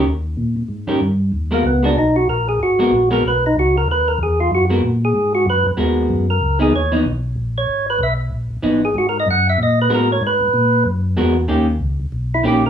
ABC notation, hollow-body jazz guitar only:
X:1
M:4/4
L:1/8
Q:"Swing" 1/4=189
K:G#m
V:1 name="Hollow-body jazz guitar"
z4 z [D,C=GA] z2 | z [G,B,FA] z [G,B,FA] z4 | z [G,B,FA] z [G,B,FA] z4 | z4 z [G,B,FA] z2 |
z4 [G,B,FA]3 z | z [E,B,D] z [E,B,D] z4 | z6 [E,B,D] z | z6 [G,B,FA] z |
z6 [G,B,FA] z | [D,A,C=G] z4 z [D,A,CG] z |]